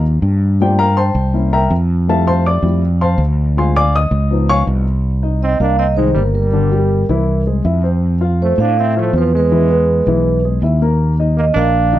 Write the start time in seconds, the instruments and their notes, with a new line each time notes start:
Already playing: fretless electric bass D#2, grand piano A#3 C4 F4
0.22 fretless electric bass G2
0.60 grand piano A3 A#3 C4 F4 G4 C5 D5 G5
0.79 grand piano A#4 F5 G5 A#5
0.97 grand piano C5 G5 A5 C6
1.15 fretless electric bass C2
1.34 grand piano A#3 C#4 E4
1.53 grand piano A#4 E5 G5 A#5
1.70 fretless electric bass F2
2.08 grand piano G3 A3 E4 A4 E5 F5 A5
2.27 grand piano C5 F5 A5 C6
2.46 grand piano D5 D6
2.63 fretless electric bass F2, grand piano G3 A3 E4
3.01 grand piano C5 F5 A5 C6
3.18 fretless electric bass D2
3.57 grand piano G#3 C4 F4 C5 F5 G#5 C6
3.76 grand piano D5 F5 G#5 D6
3.95 grand piano D#5 D#6
4.11 fretless electric bass C#2
4.31 grand piano F3 B3 D#4
4.49 grand piano C#5 F5 G#5 C#6
4.67 fretless electric bass C2
5.23 grand piano D#4 D#5
5.43 trombone C4, vibraphone D#5
5.60 fretless electric bass C2, grand piano A#3 A#4, trombone D4, vibraphone F5
5.79 trombone C4, vibraphone D#5
5.96 grand piano D#3 D#4, trombone G#3, vibraphone C5
6.14 fretless electric bass G1, trombone G3, grand piano A#3 A#4, vibraphone A#4
6.32 trombone G3, vibraphone A#4
6.53 grand piano D3 D4
6.72 grand piano G3 G4
7.09 fretless electric bass C2, grand piano E3 E4
7.47 grand piano G#3 G#4
7.65 fretless electric bass F2, grand piano E4 E5
7.84 grand piano C4 C5
8.21 grand piano F4 F5
8.42 trombone A3, vibraphone C5
8.58 fretless electric bass A2, grand piano C4 C5, trombone D4, vibraphone F5
8.79 trombone C4, vibraphone E5
8.97 grand piano F3 F4, trombone A3, vibraphone C5
9.13 fretless electric bass E2, trombone F3, grand piano C4 C5
9.18 vibraphone B4
9.35 trombone G#3, vibraphone B4
9.52 grand piano E3 E4
9.70 grand piano B3 B4
10.07 fretless electric bass B1, grand piano E3 E4
10.45 grand piano G#3 G#4
10.62 fretless electric bass D#2, grand piano E4 E5
10.82 grand piano A#3 A#4
11.19 grand piano D#4 D#5
11.37 trombone A#3, vibraphone D#5
11.54 fretless electric bass A#1, grand piano A#3 A#4, trombone D4, vibraphone F5
11.93 grand piano D#3 D#4